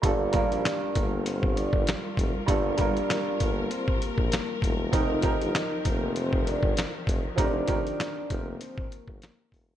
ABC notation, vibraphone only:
X:1
M:4/4
L:1/8
Q:"Swing 16ths" 1/4=98
K:Gm
V:1 name="Vibraphone"
[Dd]3 [B,B] [Cc] [Dd] z2 | [Dd]3 [B,B] [Cc] [B,B]3 | [Ee]3 [B,B] [Cc] [Dd] z2 | [Dd]3 [B,B] [Cc] [B,B]3 |]